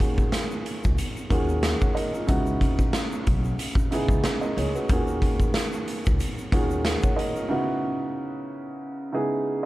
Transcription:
Already playing: upright bass D#2, upright piano D#3 A#3 C#4 F4 F#4 G#4
0.00 kick, closed hi-hat
0.18 kick, shaker
0.32 snare, closed hi-hat, shaker
0.51 shaker
0.66 closed hi-hat
0.83 upright bass C#2, kick, shaker
0.98 closed hi-hat, shaker
1.16 shaker
1.30 upright bass D#2, upright piano D#3 A#3 C#4 F4 F#4 G#4, kick, closed hi-hat, shaker
1.49 shaker
1.63 snare, closed hi-hat, shaker
1.80 upright piano C#5 F#5, kick, shaker
1.95 upright piano A#4 D#5, closed hi-hat
2.14 upright piano F4 A#4, shaker
2.27 upright bass C#2, upright piano C#3 B3 D#4 E4 F#4, kick, closed hi-hat, shaker
2.46 shaker
2.61 upright bass E2, kick, closed hi-hat
2.79 kick, shaker
2.93 snare, closed hi-hat, shaker
3.12 shaker
3.27 upright bass B1, kick, closed hi-hat
3.44 shaker
3.59 closed hi-hat, shaker
3.75 kick, shaker
3.91 upright piano C#3 B3 D#4 E4 G#4, closed hi-hat, shaker
4.08 upright bass C#2, kick, shaker
4.24 snare, closed hi-hat, shaker
4.41 upright piano A#4 D#5, shaker
4.57 upright bass C#2, upright piano G#4 C#5, closed hi-hat
4.74 upright piano F#4 B4, shaker
4.89 upright bass D#2, upright piano D#3 A#3 C#4 F4 F#4 G#4, kick, closed hi-hat, shaker
5.07 shaker
5.22 kick, closed hi-hat
5.40 kick, shaker
5.54 snare, closed hi-hat, shaker
5.73 shaker
5.88 closed hi-hat
6.05 upright bass C#2, kick, shaker
6.20 closed hi-hat, shaker
6.38 shaker
6.52 upright bass D#2, upright piano D#3 A#3 C#4 F4 F#4 G#4, kick, closed hi-hat, shaker
6.70 shaker
6.85 snare, closed hi-hat, shaker
7.02 upright piano C#5 F#5, kick, shaker
7.16 upright piano A#4 D#5, closed hi-hat
7.36 upright piano F4 A#4, shaker
7.49 upright piano C#3 B3 D#4 E4 F#4
9.13 upright piano C#3 B3 D#4 E4 G#4

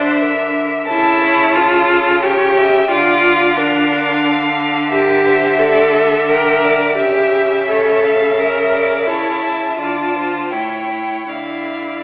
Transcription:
Already playing: cello D3, viola D4, violin C5 E5
0.22 violin A#4
0.88 cello C#3, viola E4, violin A4 A5
1.24 violin C#5
1.55 viola F4, violin A4
2.23 viola G4, violin C#5 G5
2.57 violin E5
2.91 cello D3, viola F4, violin D5 F5
3.57 viola D4, violin A#4 F5
4.25 violin A4
4.91 viola G4, violin A#4 E5
5.27 violin C5
5.59 viola A4, violin D5
5.95 violin E5
6.29 viola A#4, violin E5 G5
6.64 violin D5
6.98 cello C#3, viola G4, violin E5
7.69 viola A4, violin C#5
8.04 violin F5
8.38 viola A#4, violin E5
8.73 violin D5
9.07 viola E4, violin C#5 A5
9.42 violin E5
9.79 cello D3, viola F4, violin D5 A5
10.16 violin C5
10.52 cello A2, viola E4, violin C#5 G5
10.91 violin C#5
11.29 cello D3, viola E4, violin D5 F5

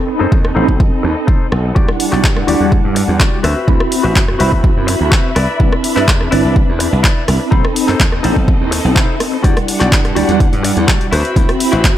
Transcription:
Already playing: tine electric piano C4 D#4 A4 B5, string section C4 A4 D#5
0.07 muted clean electric guitar stroke
0.19 slap bass F#2, clean electric guitar D#4 A4 C5
0.32 slap bass D#2, kick
0.45 cross-stick
0.55 slap bass A1, tine electric piano C4 D#4 A4 B5, clean electric guitar D#4 A4 C5
0.68 kick
0.80 slap bass F#2, kick
1.03 slap bass D#2, muted clean electric guitar stroke
1.16 muted clean electric guitar stroke
1.27 clean electric guitar D#4 A4 C5, kick
1.52 slap bass B1, cross-stick
1.64 muted clean electric guitar stroke
1.75 slap bass E2, tine electric piano G3 D4 E4 F#5, string section G3 D4 F#5, clean electric guitar F#4 G4 D5, kick
1.88 cross-stick
1.99 muted clean electric guitar stroke, open hi-hat
2.12 slap bass B1, clean electric guitar F#4 G4 D5, clap
2.24 slap bass G2, kick, clap
2.37 cross-stick
2.47 slap bass D2, tine electric piano G3 D4 E4 F#5, clean electric guitar F#4 G4 D5, open hi-hat
2.60 slap bass E2
2.72 kick
2.84 slap bass G2
2.95 muted clean electric guitar stroke, open hi-hat
3.08 slap bass E2, muted clean electric guitar stroke
3.19 clean electric guitar F#4 G4 D5, kick, clap
3.43 slap bass D2, string section C4 F#4 E5 B5, clean electric guitar F#4 B4 C5 E5, cross-stick, open hi-hat
3.67 slap bass D2, tine electric piano C4 E4 F#4 B5, kick
3.80 cross-stick
3.91 muted clean electric guitar stroke, open hi-hat
4.03 slap bass A1, clean electric guitar F#4 B4 C5 E5
4.16 slap bass F#2, kick, clap
4.28 cross-stick
4.39 slap bass C2, tine electric piano C4 E4 F#4 B5, clean electric guitar F#4 B4 C5 E5, open hi-hat
4.52 slap bass D2, kick
4.64 kick
4.77 slap bass F#2
4.87 muted clean electric guitar stroke, open hi-hat
4.99 slap bass D2, muted clean electric guitar stroke
5.11 clean electric guitar F#4 B4 C5 E5, kick, clap
5.35 slap bass C2, string section D4, clean electric guitar E4 B4 D5, cross-stick, open hi-hat
5.59 slap bass C2, tine electric piano C4 D4 E4 B4, kick
5.72 cross-stick
5.83 muted clean electric guitar stroke, open hi-hat
5.96 slap bass G2, clean electric guitar E4 B4 D5, clap
6.08 slap bass E2, kick, clap
6.21 cross-stick
6.31 slap bass G1, tine electric piano C4 D4 E4 B4, clean electric guitar E4 B4 D5, open hi-hat
6.45 slap bass C2
6.56 kick
6.69 slap bass E2
6.79 muted clean electric guitar stroke, open hi-hat
6.92 slap bass C2, muted clean electric guitar stroke
7.03 clean electric guitar E4 B4 D5, kick, clap
7.28 slap bass C2, cross-stick, open hi-hat
7.40 muted clean electric guitar stroke
7.51 slap bass B1, tine electric piano C4 D#4 A4 B5, string section C4 A4 D#5, clean electric guitar D#4 A4 C5, kick
7.65 cross-stick
7.75 muted clean electric guitar stroke, open hi-hat
7.88 slap bass F#2, clean electric guitar D#4 A4 C5, clap
8.00 slap bass D#2, kick, clap
8.12 cross-stick
8.23 slap bass A1, tine electric piano C4 D#4 A4 B5, clean electric guitar D#4 A4 C5, open hi-hat
8.36 slap bass B1, kick
8.48 kick, swell
8.61 slap bass D#2
8.71 muted clean electric guitar stroke, open hi-hat
8.84 slap bass B1, muted clean electric guitar stroke
8.95 slap bass B2, clean electric guitar D#4 A4 C5, kick, clap
9.20 cross-stick, open hi-hat
9.32 muted clean electric guitar stroke
9.43 slap bass E2, string section G3 D4 F#5, tine electric piano G3 D4 E4 F#5, clean electric guitar F#4 G4 D5, kick, closed hi-hat
9.57 cross-stick, closed hi-hat
9.67 muted clean electric guitar stroke, open hi-hat
9.80 slap bass B1, clean electric guitar F#4 G4 D5, clap, closed hi-hat
9.92 slap bass G2, kick, clap, closed hi-hat
10.05 cross-stick, closed hi-hat
10.15 slap bass D2, tine electric piano G3 D4 E4 F#5, clean electric guitar F#4 G4 D5, open hi-hat
10.29 slap bass E2, closed hi-hat
10.40 kick, closed hi-hat
10.53 slap bass G2, closed hi-hat
10.63 muted clean electric guitar stroke, open hi-hat
10.76 slap bass E2, muted clean electric guitar stroke, closed hi-hat
10.87 clean electric guitar F#4 G4 D5, kick, clap, closed hi-hat
11.01 closed hi-hat
11.11 slap bass D2, string section C4 F#4 E5 B5, clean electric guitar E4 F#4 B4 C5, cross-stick, open hi-hat
11.25 closed hi-hat
11.36 slap bass D2, tine electric piano C4 E4 F#4 B5, kick, closed hi-hat
11.49 cross-stick, closed hi-hat
11.59 muted clean electric guitar stroke, open hi-hat
11.72 slap bass A1, clean electric guitar E4 F#4 B4 C5, closed hi-hat
11.84 slap bass F#2, kick, clap, closed hi-hat

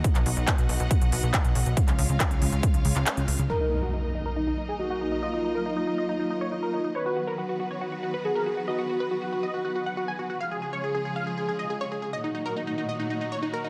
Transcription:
Already playing: string section D#4
0.04 string section B3 F#4 D#5 F#5, kick, closed hi-hat
0.15 analog synth bass B1, clap, closed hi-hat
0.26 analog synth bass B1, open hi-hat
0.37 analog synth bass B1, closed hi-hat
0.47 kick, clap, closed hi-hat
0.58 analog synth bass B1, closed hi-hat
0.69 analog synth bass B1, open hi-hat
0.80 analog synth bass B1, closed hi-hat
0.91 kick, closed hi-hat
1.02 analog synth bass B1, closed hi-hat
1.12 analog synth bass B1, open hi-hat
1.23 analog synth bass B1, closed hi-hat
1.34 kick, clap, closed hi-hat
1.45 analog synth bass B1, closed hi-hat
1.55 analog synth bass B1, open hi-hat
1.66 analog synth bass B1, closed hi-hat
1.77 string section G#3 C#4 F4 C#5 F5, kick, closed hi-hat
1.88 analog synth bass C#2, clap, closed hi-hat
1.99 analog synth bass C#2, open hi-hat
2.09 analog synth bass C#2, closed hi-hat
2.20 kick, clap, closed hi-hat
2.31 analog synth bass C#2, closed hi-hat
2.42 analog synth bass C#2, open hi-hat
2.52 analog synth bass C#2, closed hi-hat
2.63 kick, closed hi-hat
2.74 analog synth bass C#2, closed hi-hat
2.85 analog synth bass C#2, open hi-hat
2.96 analog synth bass C#2, clap, closed hi-hat
3.06 clap, closed hi-hat
3.17 analog synth bass C#2, closed hi-hat
3.28 analog synth bass C#2, open hi-hat
3.39 analog synth bass C#2, closed hi-hat
3.50 string section F#3 A#3 D#4 A#4 D#5, soft synth lead A#4, supersaw synth A#4, impact
3.61 supersaw synth D#4
3.71 supersaw synth D#4
3.82 supersaw synth F#4
3.93 supersaw synth D#4
4.04 supersaw synth D#4
4.15 supersaw synth D#4
4.26 supersaw synth A#4
4.36 supersaw synth D#4
4.47 supersaw synth D#4
4.58 supersaw synth D#4
4.69 supersaw synth G#4
4.79 supersaw synth D#4, soft synth lead F#4
4.90 supersaw synth F#4
5.01 supersaw synth D#4
5.12 supersaw synth D#4
5.22 soft synth lead F4, supersaw synth D#5
5.34 supersaw synth D#4
5.44 supersaw synth D#4
5.55 supersaw synth A#4
5.66 supersaw synth D#4
5.77 supersaw synth D#4
5.87 supersaw synth D#4
5.98 supersaw synth D#5
6.09 supersaw synth D#4
6.20 supersaw synth D#4
6.30 supersaw synth D#4
6.41 supersaw synth C#5
6.52 supersaw synth D#4
6.63 supersaw synth A#4
6.73 supersaw synth D#4
6.84 supersaw synth D#4
6.95 string section D#3 B3 F#4 B4, soft synth lead B4, supersaw synth C#5
7.06 supersaw synth F#4
7.16 supersaw synth F#4
7.27 supersaw synth A#4
7.38 supersaw synth F#4
7.49 supersaw synth F#4
7.60 supersaw synth F#4
7.71 supersaw synth C#5
7.81 supersaw synth F#4
7.92 supersaw synth F#4
8.03 supersaw synth F#4
8.14 supersaw synth B4
8.24 supersaw synth F#4, soft synth lead G#4
8.35 supersaw synth A#4
8.46 supersaw synth F#4
8.57 supersaw synth F#4
8.68 soft synth lead F#4, supersaw synth D#5
8.78 supersaw synth F#4
8.89 supersaw synth F#4
9.00 supersaw synth B4
9.11 supersaw synth F#4
9.22 supersaw synth F#4
9.32 supersaw synth F#4
9.43 supersaw synth D#5
9.54 supersaw synth F#4
9.65 supersaw synth F#4
9.75 supersaw synth F#4
9.86 supersaw synth F#5
9.97 supersaw synth F#4
10.08 supersaw synth G#5
10.19 supersaw synth F#4
10.30 supersaw synth F#4
10.40 string section C#3 F3 G#3 F4 G#4, supersaw synth F5
10.51 supersaw synth G#4
10.62 supersaw synth G#4
10.73 supersaw synth C#5
10.84 supersaw synth G#4
10.95 supersaw synth G#4
11.05 supersaw synth G#4
11.16 supersaw synth F5
11.27 supersaw synth G#4
11.38 supersaw synth G#4
11.49 supersaw synth G#4
11.59 supersaw synth D#5
11.70 supersaw synth G#4
11.81 supersaw synth C#5
11.92 supersaw synth G#4
12.02 supersaw synth G#4
12.13 string section A#2 D#3 F#3 D#4 F#4, supersaw synth D#5
12.24 supersaw synth D#4
12.35 supersaw synth D#4
12.46 supersaw synth A#4
12.56 supersaw synth D#4
12.67 supersaw synth D#4
12.78 supersaw synth D#4
12.89 supersaw synth D#5
13.00 supersaw synth D#4
13.10 supersaw synth D#4
13.21 supersaw synth D#4
13.32 supersaw synth C#5
13.43 supersaw synth D#4
13.53 supersaw synth A#4
13.64 supersaw synth D#4

